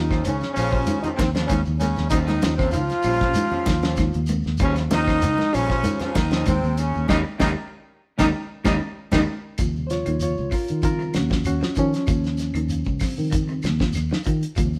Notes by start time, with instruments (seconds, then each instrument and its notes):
Already playing: fingered electric bass D#2, baritone saxophone D#3, clean electric guitar F3, reed electric piano C#4 F4 G4 A#4, tenor saxophone D#4, trombone D#4
0.10 clean electric guitar C#4 F4 C5, kick, snare, claves, shekere
0.24 fingered electric bass C#2, baritone saxophone C#3, clean electric guitar D#3, tenor saxophone C#4, trombone C#4, closed hi-hat, shekere
0.41 snare, shekere
0.54 fingered electric bass A#1, baritone saxophone C#3, clean electric guitar F3 C#4 F4 C5, trombone C#4, tenor saxophone C#4, reed electric piano G4 C5, muted clean electric guitar stroke, open hi-hat, claves, shekere
0.72 reed electric piano C#4 F4 G4 C5, kick, shekere
0.87 clean electric guitar D#3, closed hi-hat, high conga, shekere
1.02 baritone saxophone D#3, clean electric guitar C#4 F4 C5, tenor saxophone D#4, trombone D#4, closed hi-hat, low conga, shekere
1.15 fingered electric bass D#2, baritone saxophone C3, clean electric guitar D#3, trombone C4, tenor saxophone C4, kick, closed hi-hat, claves, shekere
1.19 snare, high conga
1.35 clean electric guitar C#3 C#4 F4 C5, snare, closed hi-hat, shekere
1.47 fingered electric bass D#2, baritone saxophone C#3, clean electric guitar D#3, tenor saxophone C#4, trombone C#4, kick, closed hi-hat, high conga, claves, shekere
1.65 fingered electric bass D#2, shekere
1.79 clean electric guitar A#2, baritone saxophone C#3, trombone C#4, tenor saxophone C#4, closed hi-hat, high conga, shekere
1.96 fingered electric bass D#2, snare, low conga, shekere
2.09 fingered electric bass D#2, baritone saxophone D#3, clean electric guitar G3 C#4 F4 C5, reed electric piano C#4 F4 G4 C5, tenor saxophone D#4, trombone D#4, muted clean electric guitar stroke, kick, closed hi-hat, low conga, claves, shekere
2.25 baritone saxophone D#3, tenor saxophone D#4, trombone D#4, snare, closed hi-hat, shekere
2.29 high conga
2.42 fingered electric bass D#2, clean electric guitar F3, reed electric piano C#4 F4 G4 C5, snare, closed hi-hat, high conga, shekere
2.56 baritone saxophone C3, tenor saxophone C4, trombone C4, clean electric guitar F4 C5, kick, snare, claves, shekere
2.60 clean electric guitar C#4
2.71 fingered electric bass C#2, clean electric guitar D#3, baritone saxophone F3, tenor saxophone F4, trombone F4, closed hi-hat, shekere
2.88 snare, closed hi-hat, shekere
3.03 fingered electric bass A#1, clean electric guitar F3 G3 C#4 F4 C5, reed electric piano G4, open hi-hat, claves, shekere
3.07 reed electric piano A#4
3.19 reed electric piano C#4, kick, snare, closed hi-hat, shekere
3.23 reed electric piano F4 G4 C5
3.34 clean electric guitar D#3, closed hi-hat, high conga, shekere
3.50 clean electric guitar C#4 F4 C5, low conga, shekere
3.66 fingered electric bass D#2, clean electric guitar D#3, kick, snare, closed hi-hat, high conga, claves, shekere
3.82 clean electric guitar C#3 C#4 F4 C5, snare, closed hi-hat, shekere
3.96 fingered electric bass D#2, clean electric guitar D#3, kick, snare, closed hi-hat, high conga, claves, shekere
4.13 fingered electric bass D#2, closed hi-hat, shekere
4.26 clean electric guitar C3, closed hi-hat, high conga, shekere
4.43 fingered electric bass D#2, snare, shekere
4.57 fingered electric bass D#2, clean electric guitar C#3 G3 C#4 F4 C5, reed electric piano C#4 F4 G4 A#4, kick, closed hi-hat, low conga, claves, shekere
4.62 baritone saxophone C#3, trombone C#4, tenor saxophone C#4
4.75 snare, closed hi-hat, shekere
4.91 fingered electric bass D#2, baritone saxophone D#3, clean electric guitar F3, reed electric piano C#4 F4 G4 C5, tenor saxophone D#4, trombone D#4, snare, closed hi-hat, high conga, shekere
5.07 clean electric guitar C#4 F4 C5, kick, snare, claves, shekere
5.22 fingered electric bass C#2, clean electric guitar D#3, closed hi-hat, shekere
5.38 snare, high conga, shekere
5.52 fingered electric bass A#1, baritone saxophone C#3, clean electric guitar F3 G3 C#4 F4 C5, tenor saxophone C#4, trombone C#4, reed electric piano G4 C#5, open hi-hat, claves, shekere
5.70 reed electric piano C#4 F4 G4 C5, kick, snare, shekere
5.84 clean electric guitar D#3, closed hi-hat, high conga, shekere
5.99 clean electric guitar C#4 F4 C5, tenor saxophone C#4, trombone C#4, snare, closed hi-hat, low conga, shekere
6.05 baritone saxophone C#3
6.15 fingered electric bass D#2, clean electric guitar D#3, baritone saxophone D#3, trombone D#4, tenor saxophone D#4, kick, snare, closed hi-hat, high conga, claves, shekere
6.31 clean electric guitar C#3 C#4 F4 C5, snare, closed hi-hat, shekere
6.46 fingered electric bass D#2, baritone saxophone C3, clean electric guitar D#3, trombone C4, kick, snare, closed hi-hat, high conga, claves, shekere
6.50 tenor saxophone C4
6.63 fingered electric bass D#2, shekere
6.77 clean electric guitar C#3, baritone saxophone C#3, trombone C#4, tenor saxophone C#4, closed hi-hat, shekere
6.94 fingered electric bass D#2, low conga, shekere
7.08 fingered electric bass D#2, clean electric guitar C#3 D#3 G3 C#4 D#4 G4, baritone saxophone D#3, reed electric piano D#4 G4 A#4, trombone D#4, kick, snare, high conga, claves, shekere
7.13 tenor saxophone D#4
7.39 fingered electric bass D#2, clean electric guitar C#3 D#3 G3 C#4 D#4 G4, baritone saxophone D#3, trombone D#4, reed electric piano D#4 G4 A#4, kick, snare, high conga, claves, shekere
7.43 tenor saxophone D#4
8.18 fingered electric bass D#2, clean electric guitar C#3 D#3 G3 C#4 D#4 G4, baritone saxophone D#3, reed electric piano D#4 G4 A#4, trombone D#4, kick, snare, high conga, claves, shekere
8.22 tenor saxophone D#4
8.64 fingered electric bass D#2, clean electric guitar C#3 D#3 G3 C#4 D#4 G4, baritone saxophone D#3, reed electric piano D#4 G4 A#4, trombone D#4, tenor saxophone D#4, kick, snare, high conga, claves, shekere
9.12 fingered electric bass D#2, clean electric guitar C#3 D#3 G3 C#4 D#4 G4, baritone saxophone D#3, reed electric piano D#4 G4 A#4, tenor saxophone D#4, trombone D#4, kick, snare, high conga, claves, shekere
9.58 fingered electric bass D#2, reed electric piano C3 C#3 F3 G3, clean electric guitar F3, kick, closed hi-hat, claves, shekere
9.76 shekere
9.87 reed electric piano F4 C5, closed hi-hat, shekere
9.91 reed electric piano C#5, snare
10.06 fingered electric bass D#2, clean electric guitar D#3, closed hi-hat, claves, shekere
10.20 reed electric piano F4 C#5, closed hi-hat, shekere
10.37 fingered electric bass C#2, shekere
10.51 clean electric guitar C#3, reed electric piano F4 A#4, kick, open hi-hat, claves, shekere
10.68 fingered electric bass D#3, closed hi-hat, shekere
10.82 reed electric piano C#3 F3 G3 C4 F4 A#4, clean electric guitar D#3, kick, closed hi-hat, shekere
10.99 clean electric guitar C3, shekere
11.14 fingered electric bass D#2, clean electric guitar C#3, reed electric piano C#4 F#4, snare, closed hi-hat, claves, shekere
11.30 clean electric guitar F3, kick, snare, shekere
11.44 fingered electric bass D#2, reed electric piano C#4 F#4, closed hi-hat, claves, shekere
11.60 clean electric guitar F3, snare, shekere
11.75 fingered electric bass D#3, clean electric guitar F3, reed electric piano F3 C#4, kick, closed hi-hat, shekere
11.93 snare, closed hi-hat, shekere
12.07 fingered electric bass D#2, clean electric guitar F3, kick, closed hi-hat, claves, shekere
12.24 snare, shekere
12.37 snare, closed hi-hat, shekere
12.54 fingered electric bass D#2, clean electric guitar D#3, closed hi-hat, claves, shekere
12.69 closed hi-hat, shekere
12.85 fingered electric bass C#2, kick, shekere
13.00 clean electric guitar C#3, reed electric piano C#3 F3 G3 C4, kick, snare, open hi-hat, claves, shekere
13.17 fingered electric bass D#3, shekere
13.31 clean electric guitar D#3, kick, closed hi-hat, shekere
13.48 clean electric guitar C3, shekere
13.62 fingered electric bass D#2, clean electric guitar C#3, snare, closed hi-hat, claves, shekere
13.79 clean electric guitar F3, kick, snare, shekere
13.93 fingered electric bass D#2, snare, closed hi-hat, claves, shekere
14.09 clean electric guitar D#3, snare, shekere
14.24 fingered electric bass D#3, clean electric guitar F3, kick, closed hi-hat, shekere
14.41 closed hi-hat, shekere
14.56 fingered electric bass D#2, reed electric piano C3 C#3 F3 G3, clean electric guitar F3, kick, closed hi-hat, claves, shekere
14.73 shekere